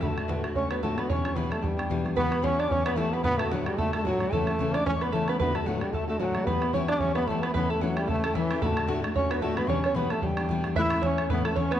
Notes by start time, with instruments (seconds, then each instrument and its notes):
0.01 steel-string acoustic guitar D2 A2 D3 A3 D4 F#4, trombone A3, five-string banjo A4, tin whistle B5, bodhran
0.07 tin whistle A5
0.17 steel-string acoustic guitar D3 A3 D4 F#4, bodhran
0.28 steel-string acoustic guitar D2 A2 D3 A3 D4 F#4, five-string banjo B4, bodhran
0.44 steel-string acoustic guitar D3 A3 D4 F#4, bodhran
0.55 steel-string acoustic guitar D3 A3 D4 F#4, trombone C#4, five-string banjo C#5, tin whistle C#6, bodhran
0.71 steel-string acoustic guitar D3 A3 D4 F#4, trombone B3, five-string banjo B4, bodhran
0.83 steel-string acoustic guitar D2 A2 D3 A3 D4 F#4, trombone A3, five-string banjo A4, tin whistle A5, bodhran
0.97 steel-string acoustic guitar D3 A3 D4 F#4, trombone B3, five-string banjo B4, tin whistle B5, bodhran
1.09 steel-string acoustic guitar E2 B2 E3 G3 B3 D4, trombone C#4, five-string banjo C#5, tin whistle C#6, bodhran
1.24 steel-string acoustic guitar E3 G3 B3 D4, bodhran
1.36 steel-string acoustic guitar E2 B2 E3 G3 B3 D4, trombone B3, five-string banjo B4, tin whistle B5, bodhran
1.51 steel-string acoustic guitar E3 G3 B3 D4, trombone A3, five-string banjo A4, tin whistle A5, bodhran
1.62 steel-string acoustic guitar E3 G3 B3 D4, trombone G3, five-string banjo G4, tin whistle A5, bodhran
1.69 tin whistle G5
1.77 steel-string acoustic guitar E3 G3 B3 D4, bodhran
1.89 steel-string acoustic guitar E2 B2 E3 G3 B3 D4, bodhran
2.04 steel-string acoustic guitar E3 G3 B3 D4, bodhran
2.16 steel-string acoustic guitar E3 G3 B3 E4, trombone B3, five-string banjo B4, tin whistle C#6, bodhran
2.22 tin whistle B5
2.31 steel-string acoustic guitar G3 B3 E4, bodhran
2.42 steel-string acoustic guitar E3 G3 B3 E4, trombone C#4, five-string banjo C#5, tin whistle C#6, bodhran
2.57 steel-string acoustic guitar B3 E4, trombone D4, five-string banjo D5, tin whistle D6, bodhran
2.68 steel-string acoustic guitar E3 G3 B3 E4, trombone C#4, bodhran
2.72 five-string banjo C#5, tin whistle C#6
2.84 steel-string acoustic guitar G3 B3 E4, trombone B3, five-string banjo B4, tin whistle B5, bodhran
2.96 steel-string acoustic guitar E3 G3 B3 E4, trombone A3, five-string banjo A4, tin whistle A5, bodhran
3.12 steel-string acoustic guitar G3 B3 E4, trombone B3, five-string banjo B4, tin whistle B5
3.23 steel-string acoustic guitar D2 A2 D3 A3 D4 F#4, trombone B3, five-string banjo B4, tin whistle B5, bodhran
3.39 trombone A3, steel-string acoustic guitar A3 D4 F#4, five-string banjo A4, tin whistle A5, bodhran
3.44 steel-string acoustic guitar D3
3.51 steel-string acoustic guitar D2 A2 D3 A3 D4 F#4, trombone F#3, five-string banjo F#4, tin whistle F#5, bodhran
3.66 steel-string acoustic guitar D3 A3 D4 F#4, trombone G3, tin whistle G5, bodhran
3.77 steel-string acoustic guitar D3 A3 D4 F#4, trombone A3, five-string banjo A4, tin whistle A5, bodhran
3.93 steel-string acoustic guitar D3 A3 D4 F#4, trombone A3, five-string banjo A4, tin whistle A5, bodhran
4.05 steel-string acoustic guitar D2 A2 D3 A3 D4 F#4, trombone F#3, five-string banjo F#4, tin whistle A5, bodhran
4.11 tin whistle F#5
4.20 steel-string acoustic guitar D3 A3 D4 F#4, bodhran
4.32 steel-string acoustic guitar C#3 E3 A3 C#4 E4, trombone A3, five-string banjo A4, tin whistle A5, bodhran
4.47 steel-string acoustic guitar C#4 E4, bodhran
4.51 steel-string acoustic guitar A3
4.59 steel-string acoustic guitar C#3 E3 A3 C#4 E4, bodhran
4.74 steel-string acoustic guitar A3 C#4 E4, trombone D4, five-string banjo D5, tin whistle D6, bodhran
4.86 steel-string acoustic guitar E3 A3 E4, trombone C#4, five-string banjo C#5, tin whistle C#6, bodhran
5.01 trombone B3, steel-string acoustic guitar C#4 E4, five-string banjo B4, tin whistle B5, bodhran
5.05 steel-string acoustic guitar A3
5.12 steel-string acoustic guitar C#3 E3 A3 C#4 E4, trombone A3, five-string banjo A4, tin whistle A5, bodhran
5.28 steel-string acoustic guitar A3 C#4 E4, trombone B3, five-string banjo B4, tin whistle B5, bodhran
5.39 steel-string acoustic guitar D2 A2 D3 A3 D4 F#4, trombone B3, five-string banjo B4, tin whistle B5, bodhran
5.55 steel-string acoustic guitar D3 A3 D4 F#4, trombone A3, five-string banjo A4, tin whistle A5, bodhran
5.66 steel-string acoustic guitar D2 A2 D3 A3 D4 F#4, trombone F#3, five-string banjo F#4, tin whistle F#5, bodhran
5.81 steel-string acoustic guitar D3 A3 D4 F#4, trombone G3, tin whistle G5, bodhran
5.92 steel-string acoustic guitar D3 A3 D4 F#4, trombone A3, five-string banjo A4, tin whistle A5, bodhran
6.08 steel-string acoustic guitar D3 A3 D4 F#4, trombone A3, five-string banjo A4, tin whistle A5
6.20 steel-string acoustic guitar D2 A2 D3 A3 D4 F#4, trombone F#3, five-string banjo F#4, tin whistle A5, bodhran
6.25 tin whistle F#5
6.35 steel-string acoustic guitar D3 A3 D4 F#4, bodhran
6.46 steel-string acoustic guitar E3 G3 B3 E4, trombone B3, five-string banjo B4, tin whistle B5, bodhran
6.62 steel-string acoustic guitar G3 B3 E4, bodhran
6.73 steel-string acoustic guitar E3 G3 B3 E4, trombone C#4, five-string banjo C#5, tin whistle C#6, bodhran
6.88 steel-string acoustic guitar B3 E4, trombone D4, five-string banjo D5, tin whistle D6, bodhran
6.93 steel-string acoustic guitar G3
7.00 steel-string acoustic guitar E3 G3 B3, trombone C#4, five-string banjo C#5, tin whistle C#6, bodhran
7.04 steel-string acoustic guitar E4
7.15 steel-string acoustic guitar G3 B3 E4, trombone B3, five-string banjo B4, tin whistle B5, bodhran
7.27 steel-string acoustic guitar E3 G3 B3, trombone A3, five-string banjo A4, tin whistle A5, bodhran
7.31 steel-string acoustic guitar E4
7.43 trombone B3, steel-string acoustic guitar B3 E4, five-string banjo B4, tin whistle B5, bodhran
7.47 steel-string acoustic guitar G3
7.54 steel-string acoustic guitar E3 A3 C#4 E4, trombone B3, five-string banjo B4, tin whistle B5, bodhran
7.70 trombone A3, steel-string acoustic guitar A3 C#4 E4, five-string banjo A4, tin whistle A5
7.81 steel-string acoustic guitar E3 A3 C#4 E4, trombone F#3, five-string banjo F#4, tin whistle F#5, bodhran
7.96 trombone G3, steel-string acoustic guitar C#4 E4, five-string banjo G4, tin whistle G5, bodhran
8.01 steel-string acoustic guitar A3
8.07 steel-string acoustic guitar E3 A3 C#4 E4, trombone A3, five-string banjo A4, tin whistle A5, bodhran
8.23 trombone A3, steel-string acoustic guitar A3 C#4 E4, five-string banjo A4, tin whistle A5, bodhran
8.34 steel-string acoustic guitar E3 A3 C#4 E4, trombone E3, five-string banjo E4, tin whistle E5, bodhran
8.51 steel-string acoustic guitar A3 C#4 E4, five-string banjo G4, bodhran
8.62 steel-string acoustic guitar D2 A2 D3 A3 D4 F#4, trombone A3, five-string banjo A4, tin whistle B5, bodhran
8.66 tin whistle A5
8.76 steel-string acoustic guitar D3 A3 D4 F#4, bodhran
8.87 steel-string acoustic guitar D2 A2 D3 A3 D4 F#4, bodhran
9.02 steel-string acoustic guitar D3 A3 D4 F#4, bodhran
9.14 steel-string acoustic guitar D3 A3 D4 F#4, trombone C#4, five-string banjo C#5, tin whistle C#6, bodhran
9.29 steel-string acoustic guitar D3 A3 D4 F#4, trombone B3, five-string banjo B4, bodhran
9.42 steel-string acoustic guitar D2 A2 D3 A3 D4 F#4, trombone A3, five-string banjo A4, tin whistle A5, bodhran
9.56 steel-string acoustic guitar D3 A3 D4 F#4, trombone B3, five-string banjo B4, tin whistle B5, bodhran
9.67 steel-string acoustic guitar E2 B2 E3 G3 B3 D4, trombone C#4, five-string banjo C#5, tin whistle C#6, bodhran
9.83 steel-string acoustic guitar E3 G3 B3 D4, five-string banjo C#5, bodhran
9.95 steel-string acoustic guitar E2 B2 E3 G3 B3 D4, trombone B3, five-string banjo B4, tin whistle B5, bodhran
10.10 steel-string acoustic guitar E3 G3 B3 D4, trombone A3, five-string banjo A4, tin whistle A5, bodhran
10.22 steel-string acoustic guitar E3 G3 B3 D4, trombone G3, five-string banjo G4, tin whistle A5, bodhran
10.26 tin whistle G5
10.37 steel-string acoustic guitar E3 G3 B3 D4, bodhran
10.49 steel-string acoustic guitar E2 B2 E3 G3 B3 D4, bodhran
10.64 steel-string acoustic guitar E3 G3 B3 D4, bodhran
10.76 steel-string acoustic guitar A2 E3 A3 C#4 E4, trombone E4, five-string banjo E5, tin whistle F#6, bodhran
10.82 tin whistle E6
10.90 steel-string acoustic guitar A3 C#4 E4, bodhran
11.02 steel-string acoustic guitar E3 A3 C#4 E4, trombone C#4, five-string banjo C#5, tin whistle E6, bodhran
11.07 tin whistle C#6
11.17 steel-string acoustic guitar A3 C#4 E4, bodhran
11.29 steel-string acoustic guitar A2 E3 A3 C#4 E4, trombone B3, five-string banjo B4, tin whistle B5, bodhran
11.45 trombone A3, steel-string acoustic guitar A3 C#4 E4, five-string banjo A4, tin whistle A5, bodhran
11.56 steel-string acoustic guitar E3 A3 C#4, trombone C#4, five-string banjo C#5, tin whistle C#6, bodhran
11.60 steel-string acoustic guitar E4
11.71 steel-string acoustic guitar A3 C#4 E4, trombone B3, five-string banjo B4, bodhran